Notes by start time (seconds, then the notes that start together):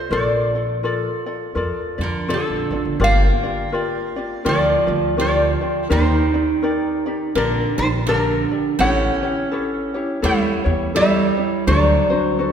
Already playing: F4 A4 C5 D#5
0.11 A#1 F4 A4 A#4 D5
0.55 F4 A4 D5
0.83 F4 A4 A#4 D5
1.26 F4 A4 D5
1.55 F2 F4 A4 A#4 D5
1.98 F2 D3 F4 D5
2.03 A#4
2.28 D3 F4 A4 D5
2.34 A4
2.50 A#1
2.71 A1 F4 A4 D5
2.85 G1
3.00 G1 F4 G4 A#4 D5
3.04 A#3 F5
3.43 F4 G4 D5
3.72 F4 G4 A#4 D5
4.16 F4 G4 D5
4.45 D2 F3 F4 G4 A#4 D5
4.49 D5
4.87 D2 F4 G4 D5
5.17 F3 F4 G4 A#4 D5
5.21 D5
5.61 F4 G4 D5
5.90 D#2 D#3 D#4 G4 A#4 C5 D5
6.34 D#4 G4 D5
6.63 D#4 G4 A#4 D5
7.06 D#4 G4 D5
7.35 A#1 D3 G4 A#4 D5
7.78 A#1 D#3 D#4 G4 C5 D5
8.07 D3 G4 A#4 D5
8.51 G4 D5
8.79 A1 C#4 E4 G4 A4 C#5 G5
9.23 E4 G4 C#5
9.51 E4 G4 A4 C#5
9.94 E4 G4 C#5
10.22 E2 G3 E4 G4 A4 C#5 E5
10.64 E2 E4 G4 C#5
10.95 G3 E4 G4 A4 C#5 E5
11.37 E4 G4 C#5
11.67 D2 F#3 D4 F#4 A4 C5 D5
12.10 D4 F#4 C5
12.39 D4 F#4 A4 C5